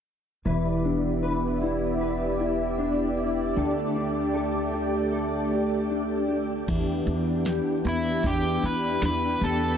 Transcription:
0.45 upright bass E1, clean electric guitar E3 B4, analog synth pad B3 E4 G4 D5
0.84 clean electric guitar D4
1.23 clean electric guitar B4
1.62 clean electric guitar E4
2.00 clean electric guitar B4
2.40 clean electric guitar E4
2.78 clean electric guitar D4
3.17 clean electric guitar E4
3.56 upright bass D2, clean electric guitar D3 A4, analog synth pad A3 D4
3.95 clean electric guitar D4
4.34 clean electric guitar A4
4.73 clean electric guitar G4
5.12 clean electric guitar A4
5.51 clean electric guitar G4
5.90 clean electric guitar D4
6.28 clean electric guitar G4
6.67 upright bass E2, analog synth pad E3 B3 D4 G4, clean electric guitar E3, kick, closed hi-hat, crash
7.07 upright bass E2, clean electric guitar D4, closed hi-hat
7.45 clean electric guitar G4, snare, closed hi-hat
7.85 upright bass E2, clean electric guitar B3, electric slide guitar E4, closed hi-hat
8.23 upright bass E2, clean electric guitar D4, electric slide guitar G4, kick, closed hi-hat
8.63 upright bass E2, clean electric guitar G4, electric slide guitar B4, closed hi-hat
9.02 upright bass E2, clean electric guitar D4, electric slide guitar B4, snare, closed hi-hat
9.41 upright bass E2, clean electric guitar B3, electric slide guitar A4, closed hi-hat

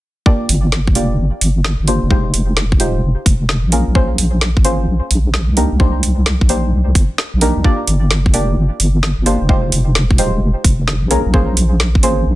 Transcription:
0.26 synth stab A#3 D4 F4 G4 D5, kick
0.49 wobble bass G1, open hi-hat
0.72 snare
0.87 wobble bass F1, kick
0.95 synth stab A#3 D4 F4 G4 D5, open hi-hat
1.18 wobble bass G1
1.41 wobble bass G1, open hi-hat
1.64 snare
1.80 wobble bass G1
1.87 synth stab A#3 D4 F4 G4 C5, open hi-hat
2.03 wobble bass F1
2.11 synth stab G#3 D#4 F4 G4 C5, kick
2.34 wobble bass F1, open hi-hat
2.57 snare
2.72 wobble bass D#1, kick
2.80 synth stab G#3 D#4 F4 G4 C5, open hi-hat
3.03 wobble bass F1
3.26 wobble bass F1, kick, open hi-hat
3.49 snare
3.64 wobble bass A#1
3.72 synth stab A#3 C#4 F4 G#4 A#4, open hi-hat
3.88 wobble bass A#1
3.95 synth stab A#3 C#4 F4 G#4 C5, kick
4.18 wobble bass A#1, open hi-hat
4.41 snare
4.57 wobble bass G#1, kick
4.64 synth stab A#3 C#4 F4 G#4 C5, open hi-hat
4.88 wobble bass A#1
5.11 wobble bass A#1, open hi-hat
5.34 snare
5.49 wobble bass C2
5.57 synth stab A#3 D4 D#4 G4 A#4, open hi-hat
5.72 wobble bass C2
5.80 synth stab A#3 D4 D#4 G4 C5, kick
6.03 wobble bass C2, open hi-hat
6.26 snare
6.41 wobble bass A#1, kick
6.49 synth stab A#3 D4 D#4 G4 C5, open hi-hat
6.72 wobble bass C2
6.95 wobble bass G1, kick, open hi-hat
7.18 snare
7.34 wobble bass A#1
7.41 synth stab A#3 D4 D#4 G4 A#4, open hi-hat
7.57 wobble bass C2
7.64 synth stab A#3 D4 F4 G4 D5, kick
7.87 wobble bass G1, open hi-hat
8.11 snare
8.26 wobble bass F1, kick
8.34 synth stab A#3 D4 F4 G4 D5, open hi-hat
8.57 wobble bass G1
8.80 wobble bass G1, open hi-hat
9.03 snare
9.18 wobble bass G1
9.26 synth stab A#3 D4 F4 G4 C5, cross-stick, open hi-hat
9.41 wobble bass F1
9.49 synth stab G#3 D#4 F4 G4 C5, kick
9.72 wobble bass F1, open hi-hat
9.95 snare
10.11 wobble bass D#1, kick
10.18 synth stab G#3 D#4 F4 G4 C5, open hi-hat
10.42 wobble bass F1
10.64 wobble bass F1, kick, open hi-hat
10.88 snare
11.03 wobble bass A#1
11.11 synth stab A#3 C#4 F4 G#4 A#4, cross-stick, open hi-hat
11.26 wobble bass A#1
11.34 synth stab A#3 C#4 F4 G#4 C5, kick
11.57 wobble bass A#1, open hi-hat
11.80 snare
11.95 wobble bass G#1, kick
12.03 synth stab A#3 C#4 F4 G#4 C5, open hi-hat
12.26 wobble bass A#1

